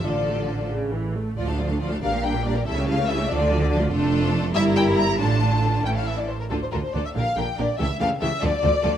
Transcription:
<<
  \new Staff \with { instrumentName = "Violin section" } { \time 6/8 \key d \minor \tempo 4. = 94 d''4. r4. | r4. f''8 g''8 d''8 | e''8 f''8 e''8 d''4. | r4. e''8 g''8 bes''8 |
a''4. g''16 f''16 e''16 d''16 c''16 bes'16 | a'16 c''16 bes'16 c''16 d''16 e''16 f''8 g''8 d''8 | e''8 f''8 e''8 d''4. | }
  \new Staff \with { instrumentName = "Violin section" } { \time 6/8 \key d \minor a'4. r4. | <f' d''>16 <a' f''>16 <f' d''>16 <a' f''>16 <f' d''>16 <a' f''>16 <bes' d''>16 <g' bes'>16 <bes' d''>16 <g' bes'>16 <bes' d''>16 <g' bes'>16 | a'16 <g' cis''>16 a'16 <g' cis''>16 a'16 <g' cis''>16 <d' a'>16 <f' d''>16 <d' a'>16 <f' d''>16 <d' a'>16 <f' d''>16 | <f' a'>4. <e' bes'>4. |
<f' a'>4. <e' a'>4 r8 | <f' a'>8 <f' a'>8 <f' a'>8 <g' bes'>8 <g' bes'>8 <g' bes'>8 | <g' a'>8 <g' a'>8 <g' a'>8 <f' a'>8 <f' a'>8 <f' a'>8 | }
  \new Staff \with { instrumentName = "Viola section" } { \time 6/8 \key d \minor << { f'4. cis8 e8 a8 | f'16 d'16 f'16 d'16 f'16 d'16 d'16 bes16 d'16 bes16 d'16 bes16 | e'16 cis'16 e'16 cis'16 e'16 cis'16 d'16 f'16 d'16 f'16 d'16 f'16 | d'4. e'4. |
d'4. cis'4 r8 | d'8 d'8 d'8 d'8 d'8 d'8 | a8 a8 a8 a8 a8 a8 | } \\ { d16 f16 a16 f16 d16 f16 r4. | f16 a16 f16 a16 f16 a16 g16 bes16 g16 bes16 g16 bes16 | g16 a16 g16 a16 g16 a16 f16 a16 f16 a16 f16 a16 | a4. g4. |
d4. e4 r8 | d8 d8 d8 d8 d8 d8 | e8 e8 e8 f8 f8 f8 | } >> }
  \new Staff \with { instrumentName = "Cello section" } { \clef bass \time 6/8 \key d \minor d4. r4. | d,4. bes,4. | cis4. d4. | f,4. g,4. |
a,4. a,4 r8 | d,8 d,8 d,8 bes,8 bes,8 bes,8 | cis8 cis8 cis8 d8 d8 d8 | }
  \new Staff \with { instrumentName = "Double bass section" } { \clef bass \time 6/8 \key d \minor a,,2~ a,,8 r8 | d,4. bes,,4. | cis,4. d,4. | f,,4. g,,4. |
a,,4. a,,4 r8 | d,8 d,8 d,8 bes,,8 bes,,8 bes,,8 | cis,8 cis,8 cis,8 d,8 d,8 d,8 | }
>>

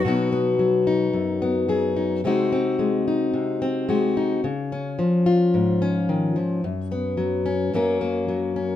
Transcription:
\new Staff \with { instrumentName = "Steel-string acoustic guitar" } { \time 4/4 \key b \major \tempo 4 = 109 << { <fis b dis' fis'>8 b4 dis'4 b8 gis'8 dis'8 | <gis bis dis' fis'>8 bis4 dis'4 bis8 fis'8 dis'8 | r8 cis'4 eis'4 cis'4. | r8 b4 cis'8 <fis ais cis' ais'>8 ais4 cis'8 | } \\ { b,4 fis4 fis,4 fis4 | bis,4 gis4 bis,4 gis4 | cis4 eis4 gis,4 dis8 eis8 | fis,4 fis4 fis,4 fis4 | } >> }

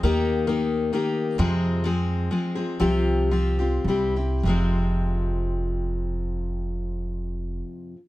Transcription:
<<
  \new Staff \with { instrumentName = "Steel-string acoustic guitar" } { \time 3/4 \key f \minor \tempo 4 = 111 <ees bes ees' g'>4 <ees bes ees' g'>4 <ees bes ees' g'>4 | <f, c f aes c' aes'>4 <f aes c' aes'>4 <f aes c' aes'>8 <f aes c' aes'>8 | <c f c' f' g'>4 <f c' f' g'>8 <c' f' g'>8 <g c' e' g'>8 <c' e' g'>8 | <f, c f aes c' f'>2.~ |
<f, c f aes c' f'>2. | }
  \new Staff \with { instrumentName = "Upright bass" } { \clef bass \time 3/4 \key f \minor ees,2 r4 | f,2 r4 | c,2 c,4 | f,,2.~ |
f,,2. | }
>>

